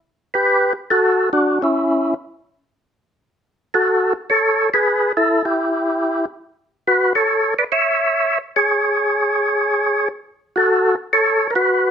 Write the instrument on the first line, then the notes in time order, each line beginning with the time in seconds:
tonewheel organ
0.34 G4 B4
0.90 F#4 A4
1.33 D4 F#4
1.62 C#4 E4
3.74 F#4 A4
4.30 A4 C#5
4.74 G#4 B4
5.17 E4 A4
5.45 E4 G4
6.87 F#4 B4
7.15 A4 C#5
7.59 B4 D5
7.72 C#5 E5
8.56 G#4 C#5
10.56 F#4 A4
11.13 A4 C#5
11.51 A#4
11.55 F#4 B4